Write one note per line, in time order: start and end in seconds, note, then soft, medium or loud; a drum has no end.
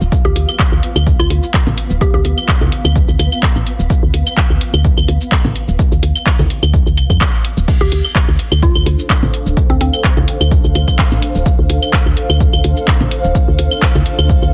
0.00 0.09 D1 medium
0.00 7.69 F3 loud
0.00 0.15 F4 medium
0.00 7.68 F5 medium
0.00 shaker soft
0.12 7.71 B3 medium
0.12 kick loud
0.12 shaker medium
0.25 0.33 D2 loud
0.25 0.44 G4 loud
0.36 0.45 D2 medium
0.36 closed hi-hat medium
0.49 claves medium
0.49 shaker soft
0.59 kick loud
0.59 clap medium
0.59 shaker medium
0.72 0.80 D2 medium
0.83 closed hi-hat loud
0.96 1.13 D2 loud
0.96 claves medium
0.96 shaker soft
1.07 kick loud
1.07 shaker medium
1.19 1.27 D2 loud
1.19 1.39 F4 medium
1.19 claves medium
1.19 shaker soft
1.30 1.40 D2 loud
1.30 closed hi-hat medium
1.43 shaker soft
1.54 kick loud
1.54 clap medium
1.54 shaker soft
1.67 1.75 A1 loud
1.67 low conga medium
1.67 shaker soft
1.78 closed hi-hat medium
1.90 1.98 D1 medium
1.90 shaker soft
2.01 2.09 G4 medium
2.01 kick loud
2.01 shaker medium
2.14 2.22 D2 medium
2.14 2.21 G4 medium
2.25 2.34 D2 medium
2.25 closed hi-hat medium
2.38 claves medium
2.38 shaker soft
2.48 kick loud
2.48 clap medium
2.48 shaker medium
2.61 2.69 D2 medium
2.61 low conga medium
2.72 closed hi-hat medium
2.85 3.02 D2 loud
2.85 claves medium
2.85 shaker soft
2.96 kick loud
2.96 shaker medium
3.08 3.16 D2 medium
3.08 shaker soft
3.19 3.29 D2 loud
3.19 closed hi-hat medium
3.19 claves medium
3.32 claves soft
3.32 shaker soft
3.43 kick loud
3.43 clap medium
3.43 shaker medium
3.56 3.64 A1 loud
3.56 shaker soft
3.67 closed hi-hat medium
3.79 3.87 D1 medium
3.79 shaker soft
3.90 kick loud
3.90 shaker medium
4.03 4.11 D2 loud
4.14 4.23 D2 medium
4.14 closed hi-hat medium
4.27 claves medium
4.27 shaker soft
4.37 kick loud
4.37 clap medium
4.37 shaker medium
4.50 4.58 D2 medium
4.61 closed hi-hat medium
4.74 4.91 D2 loud
4.74 claves medium
4.74 shaker soft
4.85 kick loud
4.85 shaker medium
4.97 5.05 D2 loud
4.97 claves medium
4.97 shaker soft
5.08 5.18 D2 loud
5.08 closed hi-hat medium
5.21 shaker soft
5.32 kick loud
5.32 clap medium
5.32 shaker medium
5.45 5.53 A1 loud
5.45 low conga medium
5.45 shaker soft
5.56 closed hi-hat medium
5.68 5.76 D1 medium
5.68 shaker soft
5.79 kick loud
5.79 shaker medium
5.92 6.00 D2 loud
5.92 shaker soft
6.03 6.12 D2 medium
6.03 closed hi-hat medium
6.15 claves medium
6.15 shaker soft
6.26 kick loud
6.26 clap loud
6.26 shaker medium
6.39 6.47 D2 medium
6.39 low conga medium
6.39 shaker soft
6.50 closed hi-hat medium
6.63 6.80 D2 loud
6.63 claves medium
6.63 shaker soft
6.74 kick loud
6.74 shaker medium
6.86 6.99 D2 medium
6.86 shaker soft
6.97 7.07 C2 medium
6.97 closed hi-hat medium
6.97 claves medium
7.10 7.18 F2 medium
7.10 kick medium
7.10 claves medium
7.10 shaker soft
7.21 kick loud
7.21 clap medium
7.21 shaker medium
7.34 shaker soft
7.45 closed hi-hat medium
7.57 7.65 D1 medium
7.57 shaker soft
7.68 14.54 D4 medium
7.68 kick loud
7.68 crash loud
7.68 shaker medium
7.81 7.89 D2 loud
7.81 8.00 G4 loud
7.92 8.01 D2 medium
7.92 closed hi-hat loud
8.04 14.54 A4 medium
8.04 claves medium
8.04 shaker soft
8.15 kick loud
8.15 clap loud
8.15 shaker medium
8.27 8.36 D2 medium
8.27 14.54 C5 medium
8.39 closed hi-hat medium
8.52 8.69 D2 loud
8.52 claves medium
8.52 shaker soft
8.63 8.83 F4 medium
8.63 14.54 F5 medium
8.63 kick loud
8.63 shaker medium
8.75 8.83 D2 loud
8.75 claves medium
8.75 shaker soft
8.86 8.96 D2 loud
8.86 closed hi-hat medium
8.99 shaker soft
9.10 kick loud
9.10 clap medium
9.10 shaker medium
9.23 9.31 A1 loud
9.23 low conga medium
9.23 shaker soft
9.34 closed hi-hat loud
9.46 9.54 D1 medium
9.46 shaker soft
9.57 kick loud
9.57 shaker medium
9.70 9.78 D2 medium
9.70 9.77 C4 medium
9.81 9.90 D2 medium
9.81 9.89 C4 medium
9.81 closed hi-hat loud
9.93 claves medium
9.93 shaker soft
10.04 kick loud
10.04 clap loud
10.04 shaker medium
10.17 10.25 D2 medium
10.17 low conga loud
10.28 closed hi-hat loud
10.41 10.58 D2 loud
10.41 claves medium
10.41 shaker soft
10.51 kick loud
10.51 shaker medium
10.64 10.72 D2 loud
10.64 shaker soft
10.75 10.85 D2 loud
10.75 closed hi-hat medium
10.75 claves medium
10.88 kick medium
10.88 claves medium
10.88 shaker soft
10.99 kick loud
10.99 clap loud
10.99 shaker medium
11.12 11.20 A1 loud
11.12 shaker soft
11.22 closed hi-hat loud
11.35 11.43 D1 medium
11.35 shaker soft
11.46 kick loud
11.46 shaker medium
11.59 11.67 D2 loud
11.70 11.79 D2 medium
11.70 closed hi-hat loud
11.82 claves medium
11.82 shaker soft
11.93 kick loud
11.93 clap loud
11.93 shaker medium
12.06 12.14 D2 medium
12.17 closed hi-hat loud
12.30 12.47 D2 loud
12.30 claves medium
12.30 shaker soft
12.40 kick loud
12.40 shaker medium
12.53 12.61 D2 loud
12.53 claves medium
12.53 shaker soft
12.64 12.74 D2 loud
12.64 closed hi-hat medium
12.77 shaker soft
12.88 kick loud
12.88 clap medium
12.88 shaker soft
13.01 13.09 A1 loud
13.01 low conga medium
13.01 shaker soft
13.11 closed hi-hat loud
13.24 13.32 D1 medium
13.24 shaker soft
13.35 kick loud
13.35 shaker medium
13.48 13.56 D2 loud
13.59 13.68 D2 medium
13.59 closed hi-hat loud
13.71 claves medium
13.71 shaker soft
13.82 kick loud
13.82 clap loud
13.82 shaker soft
13.95 14.03 D2 medium
13.95 low conga medium
13.95 shaker soft
14.06 closed hi-hat loud
14.19 14.36 D2 loud
14.19 claves medium
14.19 shaker soft
14.29 kick loud
14.29 shaker medium
14.42 14.50 D2 loud
14.42 shaker soft